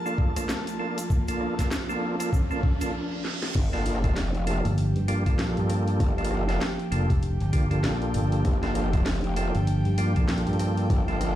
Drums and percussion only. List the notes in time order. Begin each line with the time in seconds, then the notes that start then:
0.06 shaker
0.18 kick
0.36 cross-stick, closed hi-hat, shaker
0.49 snare, shaker
0.67 closed hi-hat, shaker
0.98 closed hi-hat, shaker
1.10 kick, shaker
1.28 closed hi-hat, shaker
1.41 cross-stick
1.59 kick, snare, closed hi-hat, shaker
1.71 snare, shaker
1.90 shaker
2.20 closed hi-hat, shaker
2.33 kick, shaker
2.51 shaker
2.63 kick
2.81 closed hi-hat, shaker
3.25 snare
3.43 snare
3.55 kick, cross-stick, open hi-hat, crash
3.73 snare, open hi-hat
3.86 open hi-hat
3.95 cross-stick
4.04 kick, open hi-hat
4.16 snare, open hi-hat
4.35 open hi-hat
4.47 open hi-hat
4.65 open hi-hat
4.78 open hi-hat
4.96 open hi-hat
5.08 open hi-hat
5.26 kick, open hi-hat
5.39 snare, open hi-hat
5.57 open hi-hat
5.70 cross-stick, open hi-hat
5.88 open hi-hat
6.00 kick, cross-stick, open hi-hat
6.18 open hi-hat
6.25 open hi-hat
6.31 cross-stick
6.49 snare, open hi-hat
6.61 snare, open hi-hat
6.79 open hi-hat
6.92 open hi-hat
7.10 kick, open hi-hat
7.23 open hi-hat
7.40 open hi-hat
7.53 kick, open hi-hat
7.71 open hi-hat
7.84 snare, open hi-hat
8.02 open hi-hat
8.14 open hi-hat
8.32 open hi-hat
8.45 kick, cross-stick, open hi-hat
8.63 snare, open hi-hat
8.75 cross-stick, open hi-hat
8.93 kick, open hi-hat
9.06 snare, open hi-hat
9.09 open hi-hat
9.12 open hi-hat
9.15 open hi-hat
9.21 open hi-hat
9.24 open hi-hat
9.36 open hi-hat
9.55 open hi-hat
9.67 open hi-hat
9.85 open hi-hat
9.98 open hi-hat
10.16 kick, open hi-hat
10.29 snare, open hi-hat
10.38 open hi-hat
10.47 open hi-hat
10.53 open hi-hat
10.59 cross-stick, open hi-hat
10.77 open hi-hat
10.90 kick, cross-stick, open hi-hat
11.08 open hi-hat
11.21 cross-stick, open hi-hat